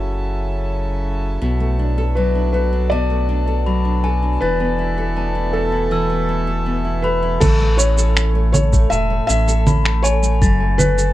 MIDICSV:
0, 0, Header, 1, 7, 480
1, 0, Start_track
1, 0, Key_signature, 3, "major"
1, 0, Tempo, 750000
1, 908, Time_signature, 4, 2, 24, 8
1, 7124, End_track
2, 0, Start_track
2, 0, Title_t, "Glockenspiel"
2, 0, Program_c, 0, 9
2, 1866, Note_on_c, 0, 81, 71
2, 2095, Note_off_c, 0, 81, 0
2, 2345, Note_on_c, 0, 83, 60
2, 2575, Note_off_c, 0, 83, 0
2, 2584, Note_on_c, 0, 80, 90
2, 2814, Note_off_c, 0, 80, 0
2, 2829, Note_on_c, 0, 93, 74
2, 2965, Note_off_c, 0, 93, 0
2, 3309, Note_on_c, 0, 81, 63
2, 3445, Note_off_c, 0, 81, 0
2, 3789, Note_on_c, 0, 88, 75
2, 4017, Note_off_c, 0, 88, 0
2, 4507, Note_on_c, 0, 83, 68
2, 4735, Note_off_c, 0, 83, 0
2, 5704, Note_on_c, 0, 81, 82
2, 5934, Note_off_c, 0, 81, 0
2, 6188, Note_on_c, 0, 83, 71
2, 6416, Note_off_c, 0, 83, 0
2, 6425, Note_on_c, 0, 80, 99
2, 6654, Note_off_c, 0, 80, 0
2, 6668, Note_on_c, 0, 93, 86
2, 6805, Note_off_c, 0, 93, 0
2, 7124, End_track
3, 0, Start_track
3, 0, Title_t, "Felt piano"
3, 0, Program_c, 1, 0
3, 1378, Note_on_c, 1, 71, 77
3, 1607, Note_off_c, 1, 71, 0
3, 1617, Note_on_c, 1, 71, 83
3, 1854, Note_on_c, 1, 74, 98
3, 1870, Note_off_c, 1, 71, 0
3, 2795, Note_off_c, 1, 74, 0
3, 2820, Note_on_c, 1, 71, 90
3, 3540, Note_on_c, 1, 69, 89
3, 3565, Note_off_c, 1, 71, 0
3, 4478, Note_off_c, 1, 69, 0
3, 4495, Note_on_c, 1, 71, 87
3, 4738, Note_on_c, 1, 69, 101
3, 4749, Note_off_c, 1, 71, 0
3, 4966, Note_off_c, 1, 69, 0
3, 4975, Note_on_c, 1, 73, 100
3, 5446, Note_off_c, 1, 73, 0
3, 5456, Note_on_c, 1, 73, 92
3, 5695, Note_on_c, 1, 76, 120
3, 5709, Note_off_c, 1, 73, 0
3, 5924, Note_off_c, 1, 76, 0
3, 5933, Note_on_c, 1, 76, 121
3, 6395, Note_off_c, 1, 76, 0
3, 6416, Note_on_c, 1, 73, 106
3, 6900, Note_on_c, 1, 71, 107
3, 6916, Note_off_c, 1, 73, 0
3, 7124, Note_off_c, 1, 71, 0
3, 7124, End_track
4, 0, Start_track
4, 0, Title_t, "Nylon-string guitar"
4, 0, Program_c, 2, 24
4, 906, Note_on_c, 2, 47, 74
4, 1026, Note_on_c, 2, 57, 56
4, 1147, Note_on_c, 2, 62, 55
4, 1266, Note_on_c, 2, 69, 55
4, 1387, Note_on_c, 2, 54, 58
4, 1498, Note_off_c, 2, 62, 0
4, 1506, Note_on_c, 2, 62, 53
4, 1623, Note_off_c, 2, 69, 0
4, 1626, Note_on_c, 2, 69, 56
4, 1738, Note_off_c, 2, 62, 0
4, 1745, Note_on_c, 2, 62, 54
4, 1858, Note_off_c, 2, 47, 0
4, 1866, Note_on_c, 2, 47, 72
4, 1982, Note_off_c, 2, 57, 0
4, 1984, Note_on_c, 2, 57, 51
4, 2097, Note_off_c, 2, 62, 0
4, 2104, Note_on_c, 2, 62, 60
4, 2222, Note_off_c, 2, 69, 0
4, 2225, Note_on_c, 2, 69, 57
4, 2337, Note_off_c, 2, 54, 0
4, 2345, Note_on_c, 2, 54, 58
4, 2456, Note_off_c, 2, 62, 0
4, 2464, Note_on_c, 2, 62, 51
4, 2581, Note_off_c, 2, 69, 0
4, 2584, Note_on_c, 2, 69, 62
4, 2697, Note_off_c, 2, 62, 0
4, 2704, Note_on_c, 2, 62, 59
4, 2824, Note_off_c, 2, 54, 0
4, 2826, Note_on_c, 2, 52, 74
4, 2874, Note_off_c, 2, 62, 0
4, 2875, Note_off_c, 2, 47, 0
4, 2942, Note_off_c, 2, 57, 0
4, 2944, Note_on_c, 2, 59, 58
4, 2964, Note_off_c, 2, 69, 0
4, 3064, Note_on_c, 2, 64, 50
4, 3185, Note_on_c, 2, 69, 53
4, 3297, Note_off_c, 2, 59, 0
4, 3305, Note_on_c, 2, 59, 60
4, 3422, Note_off_c, 2, 64, 0
4, 3424, Note_on_c, 2, 64, 51
4, 3542, Note_off_c, 2, 69, 0
4, 3544, Note_on_c, 2, 69, 57
4, 3660, Note_off_c, 2, 64, 0
4, 3662, Note_on_c, 2, 64, 51
4, 3780, Note_off_c, 2, 52, 0
4, 3782, Note_on_c, 2, 52, 70
4, 3895, Note_off_c, 2, 59, 0
4, 3902, Note_on_c, 2, 59, 55
4, 4022, Note_off_c, 2, 64, 0
4, 4024, Note_on_c, 2, 64, 58
4, 4140, Note_off_c, 2, 69, 0
4, 4142, Note_on_c, 2, 69, 61
4, 4255, Note_off_c, 2, 59, 0
4, 4263, Note_on_c, 2, 59, 59
4, 4380, Note_off_c, 2, 64, 0
4, 4382, Note_on_c, 2, 64, 52
4, 4501, Note_off_c, 2, 69, 0
4, 4503, Note_on_c, 2, 69, 59
4, 4622, Note_off_c, 2, 64, 0
4, 4624, Note_on_c, 2, 64, 59
4, 4744, Note_on_c, 2, 45, 84
4, 4793, Note_off_c, 2, 59, 0
4, 4864, Note_on_c, 2, 57, 66
4, 4981, Note_off_c, 2, 64, 0
4, 4983, Note_on_c, 2, 61, 58
4, 5101, Note_off_c, 2, 69, 0
4, 5104, Note_on_c, 2, 69, 65
4, 5219, Note_off_c, 2, 61, 0
4, 5222, Note_on_c, 2, 61, 61
4, 5342, Note_off_c, 2, 57, 0
4, 5344, Note_on_c, 2, 57, 59
4, 5462, Note_off_c, 2, 69, 0
4, 5465, Note_on_c, 2, 69, 61
4, 5582, Note_off_c, 2, 57, 0
4, 5585, Note_on_c, 2, 57, 59
4, 5695, Note_off_c, 2, 45, 0
4, 5703, Note_on_c, 2, 45, 82
4, 5822, Note_off_c, 2, 57, 0
4, 5825, Note_on_c, 2, 57, 56
4, 5942, Note_off_c, 2, 61, 0
4, 5945, Note_on_c, 2, 61, 60
4, 6022, Note_off_c, 2, 52, 0
4, 6062, Note_off_c, 2, 69, 0
4, 6064, Note_on_c, 2, 69, 67
4, 6183, Note_off_c, 2, 61, 0
4, 6186, Note_on_c, 2, 61, 59
4, 6303, Note_off_c, 2, 57, 0
4, 6305, Note_on_c, 2, 57, 57
4, 6423, Note_off_c, 2, 69, 0
4, 6425, Note_on_c, 2, 69, 66
4, 6543, Note_off_c, 2, 57, 0
4, 6545, Note_on_c, 2, 57, 69
4, 6663, Note_off_c, 2, 45, 0
4, 6666, Note_on_c, 2, 42, 78
4, 6784, Note_off_c, 2, 57, 0
4, 6786, Note_on_c, 2, 57, 62
4, 6905, Note_off_c, 2, 61, 0
4, 6907, Note_on_c, 2, 61, 61
4, 7023, Note_off_c, 2, 69, 0
4, 7026, Note_on_c, 2, 69, 63
4, 7124, Note_off_c, 2, 42, 0
4, 7124, Note_off_c, 2, 57, 0
4, 7124, Note_off_c, 2, 61, 0
4, 7124, Note_off_c, 2, 69, 0
4, 7124, End_track
5, 0, Start_track
5, 0, Title_t, "Harmonium"
5, 0, Program_c, 3, 20
5, 0, Note_on_c, 3, 49, 63
5, 0, Note_on_c, 3, 54, 75
5, 0, Note_on_c, 3, 64, 81
5, 0, Note_on_c, 3, 69, 81
5, 907, Note_on_c, 3, 47, 64
5, 909, Note_off_c, 3, 49, 0
5, 1386, Note_on_c, 3, 62, 64
5, 1674, Note_off_c, 3, 64, 0
5, 2827, Note_off_c, 3, 54, 0
5, 3092, Note_on_c, 3, 64, 75
5, 3307, Note_on_c, 3, 57, 83
5, 3594, Note_off_c, 3, 62, 0
5, 4746, Note_off_c, 3, 69, 0
5, 4747, Note_off_c, 3, 47, 0
5, 4747, Note_off_c, 3, 64, 0
5, 4748, Note_off_c, 3, 57, 0
5, 7124, End_track
6, 0, Start_track
6, 0, Title_t, "Sub bass"
6, 0, Program_c, 4, 38
6, 0, Note_on_c, 4, 30, 82
6, 884, Note_off_c, 4, 30, 0
6, 908, Note_on_c, 4, 35, 87
6, 2804, Note_off_c, 4, 35, 0
6, 2828, Note_on_c, 4, 28, 91
6, 4724, Note_off_c, 4, 28, 0
6, 4750, Note_on_c, 4, 33, 104
6, 5668, Note_off_c, 4, 33, 0
6, 5708, Note_on_c, 4, 28, 85
6, 5897, Note_off_c, 4, 28, 0
6, 5948, Note_on_c, 4, 33, 78
6, 6669, Note_on_c, 4, 30, 92
6, 6678, Note_off_c, 4, 33, 0
6, 7124, Note_off_c, 4, 30, 0
6, 7124, End_track
7, 0, Start_track
7, 0, Title_t, "Drums"
7, 4745, Note_on_c, 9, 49, 93
7, 4745, Note_on_c, 9, 64, 78
7, 4746, Note_on_c, 9, 82, 32
7, 4748, Note_on_c, 9, 36, 114
7, 4809, Note_off_c, 9, 49, 0
7, 4809, Note_off_c, 9, 64, 0
7, 4810, Note_off_c, 9, 82, 0
7, 4812, Note_off_c, 9, 36, 0
7, 4986, Note_on_c, 9, 82, 76
7, 5050, Note_off_c, 9, 82, 0
7, 5107, Note_on_c, 9, 82, 46
7, 5171, Note_off_c, 9, 82, 0
7, 5227, Note_on_c, 9, 26, 76
7, 5228, Note_on_c, 9, 82, 34
7, 5291, Note_off_c, 9, 26, 0
7, 5292, Note_off_c, 9, 82, 0
7, 5466, Note_on_c, 9, 64, 86
7, 5468, Note_on_c, 9, 82, 85
7, 5530, Note_off_c, 9, 64, 0
7, 5532, Note_off_c, 9, 82, 0
7, 5588, Note_on_c, 9, 36, 99
7, 5588, Note_on_c, 9, 82, 42
7, 5652, Note_off_c, 9, 36, 0
7, 5652, Note_off_c, 9, 82, 0
7, 5708, Note_on_c, 9, 82, 34
7, 5772, Note_off_c, 9, 82, 0
7, 5948, Note_on_c, 9, 82, 77
7, 6012, Note_off_c, 9, 82, 0
7, 6069, Note_on_c, 9, 82, 43
7, 6133, Note_off_c, 9, 82, 0
7, 6187, Note_on_c, 9, 64, 80
7, 6188, Note_on_c, 9, 82, 35
7, 6251, Note_off_c, 9, 64, 0
7, 6252, Note_off_c, 9, 82, 0
7, 6307, Note_on_c, 9, 26, 79
7, 6371, Note_off_c, 9, 26, 0
7, 6429, Note_on_c, 9, 82, 78
7, 6493, Note_off_c, 9, 82, 0
7, 6548, Note_on_c, 9, 82, 44
7, 6612, Note_off_c, 9, 82, 0
7, 6667, Note_on_c, 9, 36, 119
7, 6670, Note_on_c, 9, 82, 33
7, 6731, Note_off_c, 9, 36, 0
7, 6734, Note_off_c, 9, 82, 0
7, 6908, Note_on_c, 9, 64, 74
7, 6910, Note_on_c, 9, 82, 79
7, 6972, Note_off_c, 9, 64, 0
7, 6974, Note_off_c, 9, 82, 0
7, 7028, Note_on_c, 9, 82, 46
7, 7092, Note_off_c, 9, 82, 0
7, 7124, End_track
0, 0, End_of_file